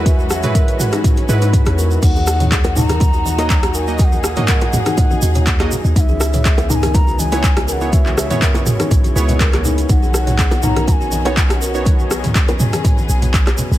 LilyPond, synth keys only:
\new Staff \with { instrumentName = "Synth keys" } { \time 4/4 \key ees \phrygian \tempo 4 = 122 <gis e' fis' b'>8. <gis e' fis' b'>4.~ <gis e' fis' b'>16 <gis e' fis' b'>4. | r2 r8. <bes ees' ges' ees''>16 r8. <bes ees' ges' ees''>16~ | <bes ees' ges' ees''>8. <bes ees' ges' ees''>2~ <bes ees' ges' ees''>8 <bes ees' ges' ees''>16 r8 | r2 r8. <ces' fes' aes' des''>16 r8. <ces' fes' aes' des''>16~ |
<ces' fes' aes' des''>8. <ces' fes' aes' des''>4.~ <ces' fes' aes' des''>16 <ces' fes' aes' des''>4. | r2 r8. <b dis' fis' cis''>16 r8. <b dis' fis' cis''>16~ | <b dis' fis' cis''>8 r2. r8 | }